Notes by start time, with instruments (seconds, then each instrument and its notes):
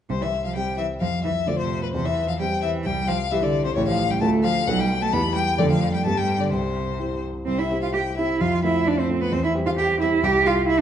0.10 grand piano C2, cello C3, violin C5
0.21 cello E3, violin E5
0.45 cello F3, violin F5
0.55 cello G3, grand piano G3 C4 G4, violin G5
0.77 cello E3, violin E5
1.01 grand piano F2, cello F3, violin F5
1.24 cello E3, violin E5
1.47 cello D3, grand piano A3 C4 F4, violin D5
1.59 cello C3, violin C5
1.82 cello B2, violin B4
1.93 grand piano E2, cello C3, violin C5
2.04 cello E3, violin E5
2.27 cello F3, violin F5
2.38 cello G3, grand piano G3 C4 G4, violin G5
2.62 cello E3, violin E5
2.84 grand piano C2, cello G3, violin G5
3.08 cello F3, violin F5
3.31 cello E3, grand piano G3 E4 G4, violin E5
3.41 cello D3, violin D5
3.65 cello C3, violin C5
3.75 grand piano A1 A3 E4 G4, cello C#3, violin C#5
3.87 cello F3, violin F5
4.09 cello G3, violin G5
4.20 grand piano D2 A3 F4 A4, cello A3, violin A5
4.44 cello F3, violin F5
4.67 grand piano B1 B3 D#4 A4, cello F#3, violin F#5
4.79 cello G3, violin G5
5.01 cello A3, violin A5
5.12 grand piano E2 B3 E4 G4, cello B3, violin B5
5.35 cello G3, violin G5
5.58 grand piano F2 A3 D4 A4, cello D3, violin D5
5.70 cello F3, violin F5
5.93 cello G3, violin G5
6.03 grand piano G2 B3 D4 G4, cello A3, violin A5
6.15 cello G3, violin G5
6.38 cello D3, violin D5
6.50 grand piano C2, cello C3, violin C5
7.00 grand piano C4 E4 G4
7.45 grand piano C2, cello C4, violin C5
7.59 cello E4, violin E5
7.71 grand piano C4 E4 G4
7.82 cello F4, violin F5
7.93 cello G4, violin G5
8.17 grand piano C4 E4 G4, cello E4, violin E5
8.40 grand piano F2, cello F4, violin F5
8.64 grand piano A3 C4 F4, cello E4, violin E5
8.86 cello D4, violin D5
8.99 cello C4, violin C5
9.10 grand piano A3 C4 F4
9.21 cello B3, violin B4
9.32 grand piano E2, cello C4, violin C5
9.43 cello E4, violin E5
9.55 grand piano G3 C4 G4
9.66 cello F4, violin F5
9.78 cello G4, violin G5
10.01 grand piano G3 C4 G4, cello E4, violin E5
10.23 grand piano C2, cello G4, violin G5
10.45 grand piano G3 E4 G4, cello F4, violin F5
10.67 cello E4, violin E5